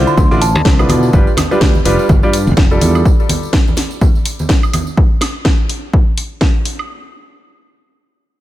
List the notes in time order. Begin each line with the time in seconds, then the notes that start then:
Already playing: D3 D4 E4 F4 C5
0.07 C6, tambourine
0.17 D2, kick, tambourine, high conga
0.31 A1 D3 D4 E4 F4 D5, tambourine
0.41 A5, open hi-hat, tambourine
0.55 D2, tambourine, high conga
0.65 C2, kick, snare, tambourine
0.79 D3 D4 E4 F4 B4, tambourine, high woodblock
0.89 B2, open hi-hat, tambourine, high conga, high woodblock
1.03 tambourine
1.13 G1 G3 D4 F4 G4 B4, kick, tambourine
1.27 tambourine
1.37 snare, open hi-hat, tambourine, high conga, high woodblock
1.51 G3 D4 F4 G4 B4, tambourine
1.61 D2, kick, snare, tambourine
1.75 tambourine, high conga
1.85 F1 G3 D4 F4 G4 B4, open hi-hat, tambourine
1.99 tambourine
2.09 G1, kick, tambourine, high conga
2.23 G2 G3 D4 F4 G4 D5, tambourine
2.33 open hi-hat, tambourine
2.47 G1, tambourine, high conga
2.57 kick, snare, tambourine
2.71 G3 D4 F4 G4 A4, tambourine
2.81 E2, open hi-hat, tambourine, high conga
2.95 tambourine, high woodblock
3.05 kick, tambourine
3.20 tambourine
3.29 open hi-hat, tambourine, high conga
3.43 tambourine
3.53 kick, snare, tambourine
3.67 tambourine, high conga
3.77 snare, open hi-hat, tambourine
3.91 tambourine
4.01 kick, tambourine, high conga
4.15 tambourine
4.25 open hi-hat, tambourine
4.39 tambourine, high conga
4.49 kick, snare, tambourine
4.63 tambourine, high woodblock
4.73 open hi-hat, tambourine, high conga, high woodblock
4.87 tambourine
4.97 kick
5.21 snare, open hi-hat, high woodblock
5.45 kick, snare
5.69 open hi-hat
5.93 kick
6.18 open hi-hat
6.41 kick, snare
6.65 open hi-hat
6.79 high woodblock